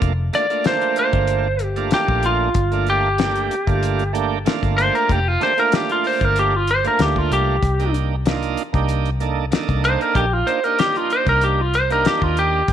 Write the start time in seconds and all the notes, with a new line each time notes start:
Already playing: A3 A#3 D4 F4
0.02 F1, kick, closed hi-hat
0.33 A3 A#3 D4 F4 D5, snare, closed hi-hat
0.50 A3 A#3 D4 F4, closed hi-hat
0.64 C5, snare, closed hi-hat
0.81 closed hi-hat
0.96 C5, closed hi-hat
1.13 G1, kick, closed hi-hat
1.27 closed hi-hat
1.59 G4, closed hi-hat
1.76 A3 A#3 D4 F4, closed hi-hat
1.91 G4, snare, closed hi-hat
2.08 A#1, kick
2.23 F4, closed hi-hat
2.54 G1, kick, closed hi-hat
2.71 A3 A#3 D4 F4, closed hi-hat
2.87 G4, closed hi-hat
3.18 A3 A#3 D4 G4, snare, closed hi-hat
3.36 closed hi-hat
3.51 closed hi-hat
3.67 G1 A3 A#3 D4 F4, kick, closed hi-hat
3.83 closed hi-hat
3.99 closed hi-hat
4.13 A3 A#3 D4 G4, closed hi-hat
4.45 A3 A#3 D4 F4, snare, closed hi-hat
4.63 G1, kick, closed hi-hat
4.78 C5, closed hi-hat
4.95 A#4, closed hi-hat
5.09 F1 G4, kick, closed hi-hat
5.28 F4
5.40 A3 A#3 D4 G4 C5, snare, closed hi-hat
5.57 A3 A#3 D4 F4 A#4, closed hi-hat
5.72 G4, snare, closed hi-hat
5.89 F4, closed hi-hat
6.04 C5, open hi-hat
6.21 G1 A#4, kick, closed hi-hat
6.36 G4, closed hi-hat
6.56 F4
6.67 C5, closed hi-hat
6.84 A3 A#3 D4 F4 A#4, closed hi-hat
6.99 D2 G4, snare, closed hi-hat
7.16 F4, kick
7.31 C2 G4, closed hi-hat
7.63 C2, kick, closed hi-hat
7.79 A#3 D4 D#4 G4, closed hi-hat
7.94 closed hi-hat
8.26 A#3 D4 D#4 F4, snare, closed hi-hat
8.43 closed hi-hat
8.57 closed hi-hat
8.73 C2 A#3 D4 D#4 G4, kick, closed hi-hat
8.88 closed hi-hat
9.05 closed hi-hat
9.20 A#3 D4 D#4 A4, closed hi-hat
9.51 A#3 D4 D#4 A4, snare, closed hi-hat
9.69 C2, kick, closed hi-hat
9.84 C5, closed hi-hat
10.01 A#4, closed hi-hat
10.15 A#1 G4, kick, closed hi-hat
10.33 F4
10.46 A#3 D4 D#4 F4 C5, closed hi-hat
10.64 A#3 D4 D#4 G4 A#4, closed hi-hat
10.79 G4, snare, closed hi-hat
10.95 F4, closed hi-hat
11.10 C5, closed hi-hat
11.26 C2 A#4, kick, closed hi-hat
11.41 G4, closed hi-hat
11.61 F4
11.74 C5, closed hi-hat
11.90 A#3 D4 D#4 G4 A#4, closed hi-hat
12.05 G4, snare, closed hi-hat
12.22 D#2 F4, kick
12.37 G4, closed hi-hat
12.68 G1, kick, closed hi-hat